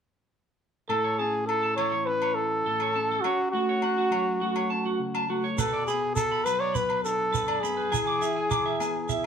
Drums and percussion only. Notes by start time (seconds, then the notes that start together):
0.90 low agogo
1.49 low agogo
1.78 low agogo
2.22 low agogo
2.80 low agogo
3.24 low agogo
3.82 low agogo
4.12 low agogo
4.56 low agogo
5.15 low agogo
5.58 low agogo, shekere
5.88 shekere
6.16 low agogo, shekere
6.46 low agogo, shekere
6.75 shekere
6.90 low agogo
7.05 shekere
7.34 shekere
7.48 low agogo
7.64 shekere
7.92 low agogo, shekere
8.22 shekere
8.51 low agogo, shekere
8.80 low agogo, shekere
9.09 shekere